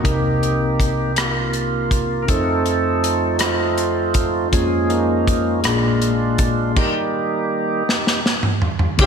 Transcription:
0.02 2.24 C2 soft
0.02 0.53 C3 soft
0.02 2.24 C3 soft
0.02 1.12 A#3 medium
0.02 2.23 C4 soft
0.02 2.24 D#4 soft
0.02 1.12 D#4 medium
0.02 2.24 G4 soft
0.02 1.20 G4 medium
0.02 2.25 A#4 medium
0.02 kick medium
0.02 closed hi-hat medium
0.43 closed hi-hat soft
0.80 kick medium
0.80 closed hi-hat soft
1.16 2.25 A#3 medium
1.16 2.25 F4 medium
1.16 cross-stick medium
1.16 closed hi-hat medium
1.53 closed hi-hat soft
1.91 kick medium
1.91 closed hi-hat medium
2.23 4.47 C4 soft
2.23 2.29 A#4 medium
2.27 4.48 F2 soft
2.27 4.48 F3 soft
2.27 3.39 A3 soft
2.27 3.37 C4 medium
2.27 4.48 D#4 soft
2.27 4.49 D#4 medium
2.27 4.48 F4 soft
2.27 3.37 A4 medium
2.27 4.49 A4 soft
2.27 kick medium
2.27 closed hi-hat medium
2.66 closed hi-hat soft
3.04 closed hi-hat soft
3.39 4.48 A3 medium
3.39 4.48 C4 medium
3.39 4.55 F4 medium
3.39 cross-stick medium
3.39 closed hi-hat medium
3.78 closed hi-hat soft
4.14 kick medium
4.14 closed hi-hat medium
4.52 5.60 F2 soft
4.52 5.60 F3 soft
4.52 4.89 G#3 soft
4.52 5.63 A#3 soft
4.52 5.64 C#4 soft
4.52 5.61 C#4 medium
4.52 5.64 F4 soft
4.52 5.65 G#4 medium
4.52 4.92 G#4 medium
4.52 kick medium
4.52 closed hi-hat medium
4.89 5.60 G#3 soft
4.89 5.60 A#3 medium
4.89 5.66 D#4 medium
4.89 closed hi-hat soft
5.27 kick medium
5.27 closed hi-hat soft
5.63 6.72 A#1 soft
5.63 6.13 A#2 soft
5.63 6.72 A#2 soft
5.63 6.72 G#3 medium
5.63 6.76 A#3 soft
5.63 6.72 D4 medium
5.63 6.76 D4 soft
5.63 6.79 F4 medium
5.63 6.76 F4 soft
5.63 6.77 G#4 medium
5.63 cross-stick medium
5.63 closed hi-hat medium
6.02 closed hi-hat soft
6.38 kick medium
6.38 closed hi-hat medium
6.76 7.83 D#3 soft
6.76 7.84 G3 soft
6.76 7.84 A#3 soft
6.76 8.21 D#4 soft
6.76 8.20 G4 medium
6.76 kick medium
6.76 crash medium
7.89 snare soft
8.07 snare soft
8.26 snare medium
8.43 mid tom medium
8.62 floor tom medium
8.79 floor tom medium
8.98 9.06 C#2 medium
8.98 9.06 C#3 medium
8.98 9.06 G#3 medium
8.98 9.06 C#4 medium
8.98 9.06 D#4 soft
8.98 9.06 F4 medium
8.98 9.06 G#4 medium
8.98 9.06 F5 medium
8.98 kick loud
8.98 crash medium
9.02 9.06 G#4 medium

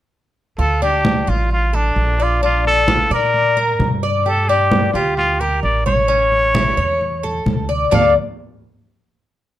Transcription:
0.58 1.24 D2 medium
0.58 0.81 F4 medium
0.58 0.81 A4 medium
0.58 high conga soft
0.82 1.26 D4 medium
0.82 1.31 G4 medium
0.82 high conga soft
1.05 high conga medium
1.27 1.93 A1 medium
1.27 1.72 F4 medium
1.27 1.51 F4 medium
1.27 high conga soft
1.51 1.77 F4 medium
1.51 high conga soft
1.73 2.24 D4 medium
1.73 2.18 A4 medium
1.73 high conga soft
1.96 3.04 A#1 medium
1.96 high conga soft
2.20 2.44 F4 medium
2.20 2.42 D5 medium
2.42 2.87 D4 medium
2.42 2.65 F4 medium
2.42 high conga soft
2.65 3.09 A4 loud
2.65 high conga soft
2.88 3.10 F4 medium
2.88 high conga medium
3.10 3.75 A#2 medium
3.10 4.00 A#4 loud
3.10 3.56 D5 medium
3.10 high conga soft
3.34 high conga soft
3.57 4.01 A#4 medium
3.57 high conga soft
3.79 4.88 G2 medium
3.79 high conga medium
4.03 4.25 D5 medium
4.26 4.48 G4 medium
4.26 4.50 A4 medium
4.26 high conga soft
4.49 4.93 D4 medium
4.49 4.93 G4 medium
4.49 high conga soft
4.71 high conga medium
4.94 5.59 D2 medium
4.94 5.15 F4 medium
4.94 5.39 G4 medium
4.94 high conga soft
5.17 5.42 F4 medium
5.17 high conga soft
5.40 5.62 G4 medium
5.40 5.85 A#4 medium
5.40 high conga soft
5.63 6.71 A1 medium
5.63 5.84 D5 medium
5.63 high conga soft
5.86 6.08 C#5 medium
5.86 7.42 C#5 medium
5.86 high conga medium
6.08 6.53 C#4 medium
6.08 high conga soft
6.32 high conga soft
6.54 6.77 E4 medium
6.54 high conga medium
6.77 7.42 E2 medium
6.77 7.22 C#5 medium
6.77 high conga soft
7.01 high conga soft
7.23 7.68 A4 medium
7.23 high conga soft
7.46 7.86 D2 medium
7.46 high conga medium
7.69 7.91 D5 medium
7.91 8.13 D2 medium
7.91 8.13 D4 medium
7.91 8.13 A4 medium
7.91 8.13 D5 medium
7.91 8.14 F5 medium
7.91 low conga medium

